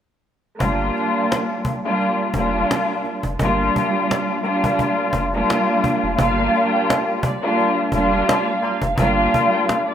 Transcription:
0.57 0.91 G1 loud
0.57 1.72 G3 loud
0.57 1.72 A#3 medium
0.57 1.73 D4 medium
0.57 1.73 F4 loud
0.57 cajon bass loud
0.81 cajon slap soft
0.97 cajon slap soft
1.32 cajon slap loud
1.65 cajon bass medium
1.84 2.31 G3 medium
1.84 2.31 A#3 medium
1.84 2.31 D4 medium
1.84 2.32 F4 loud
2.01 cajon slap soft
2.34 2.64 F1 medium
2.34 3.16 G3 loud
2.34 3.16 A#3 medium
2.34 3.17 D4 medium
2.34 3.17 F4 loud
2.34 cajon bass medium
2.54 cajon slap soft
2.71 cajon slap loud
3.04 cajon slap soft
3.23 3.37 F1 medium
3.23 cajon bass medium
3.39 3.70 G1 loud
3.39 4.37 G3 loud
3.39 4.37 A#3 medium
3.39 4.37 D4 medium
3.39 4.38 F4 loud
3.39 cajon bass loud
3.60 cajon slap soft
3.76 cajon bass medium
4.11 cajon slap loud
4.42 5.24 G3 medium
4.42 5.25 A#3 medium
4.42 5.25 D4 medium
4.42 5.25 F4 loud
4.42 cajon slap soft
4.64 cajon bass loud
4.79 cajon bass medium
4.79 cajon slap medium
5.13 5.44 F1 medium
5.13 cajon bass loud
5.33 6.12 G3 loud
5.33 6.12 A#3 medium
5.33 6.13 D4 medium
5.33 6.13 F4 loud
5.33 cajon slap soft
5.50 cajon slap loud
5.84 cajon bass medium
6.04 6.17 F1 medium
6.16 6.49 G1 loud
6.16 7.30 G3 loud
6.16 7.31 A#3 loud
6.16 7.31 D4 medium
6.16 7.31 F4 loud
6.16 6.70 F5 loud
6.16 cajon bass loud
6.39 cajon slap soft
6.55 cajon slap soft
6.73 6.87 G5 medium
6.90 cajon slap loud
7.23 7.40 D5 medium
7.23 cajon bass loud
7.42 7.89 G3 loud
7.42 7.89 A#3 medium
7.42 7.90 D4 medium
7.42 7.90 F4 loud
7.59 cajon slap medium
7.92 8.23 F1 loud
7.92 8.74 G3 loud
7.92 8.75 A#3 medium
7.92 8.75 D4 loud
7.92 8.75 F4 loud
7.92 8.94 F5 medium
7.92 cajon bass loud
8.12 cajon slap soft
8.29 8.45 A#3 medium
8.29 8.45 D4 medium
8.29 8.45 F4 medium
8.29 cajon slap loud
8.61 8.84 A#3 loud
8.61 8.84 D4 loud
8.61 8.84 F4 loud
8.61 cajon slap soft
8.82 8.95 F1 medium
8.82 cajon bass medium
8.98 9.28 G1 loud
8.98 9.94 G3 loud
8.98 9.94 A#3 medium
8.98 9.94 D4 medium
8.98 9.94 F4 loud
8.98 9.49 F5 loud
8.98 cajon bass loud
9.18 cajon slap soft
9.34 cajon bass medium
9.52 9.66 G5 medium
9.67 9.85 F5 medium
9.67 cajon slap loud
9.86 9.94 D5 medium

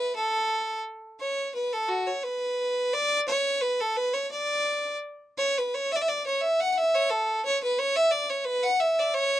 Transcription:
0.00 0.15 B4 medium
0.15 0.81 A4 medium
1.20 1.52 C#5 medium
1.55 1.74 B4 medium
1.73 1.90 A4 medium
1.89 2.08 F#4 medium
2.07 2.25 C#5 medium
2.23 2.95 B4 medium
2.94 3.20 D5 loud
3.28 3.63 C#5 medium
3.61 3.82 B4 medium
3.80 3.98 A4 medium
3.97 4.15 B4 medium
4.14 4.30 C#5 medium
4.31 4.96 D5 medium
5.38 5.59 C#5 loud
5.58 5.76 B4 medium
5.75 5.93 C#5 medium
5.92 6.03 D5 medium
5.92 5.97 E5 loud
6.02 6.10 E5 loud
6.08 6.25 D5 medium
6.26 6.42 C#5 medium
6.41 6.62 E5 medium
6.61 6.72 F#5 loud
6.72 6.79 F#5 medium
6.78 6.96 E5 medium
6.95 7.11 C#5 loud
7.10 7.42 A4 medium
7.45 7.60 C#5 loud
7.63 7.80 B4 medium
7.79 7.97 C#5 loud
7.96 8.13 E5 loud
8.11 8.31 D5 loud
8.29 8.46 C#5 medium
8.45 8.64 B4 loud
8.63 8.81 F#5 loud
8.80 9.01 E5 medium
8.99 9.15 D5 medium
9.14 9.40 C#5 loud

